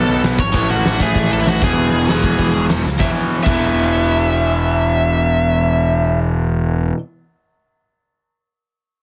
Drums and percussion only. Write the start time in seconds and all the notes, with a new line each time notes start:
0.23 snare, open hi-hat
0.39 kick
0.54 kick, open hi-hat
0.85 snare, open hi-hat
1.00 kick
1.15 kick, open hi-hat
1.46 snare, open hi-hat
1.62 kick
1.77 open hi-hat
2.08 snare, open hi-hat
2.24 kick
2.38 kick, open hi-hat
2.69 snare, open hi-hat
2.86 snare
3.00 kick, snare
3.46 kick, crash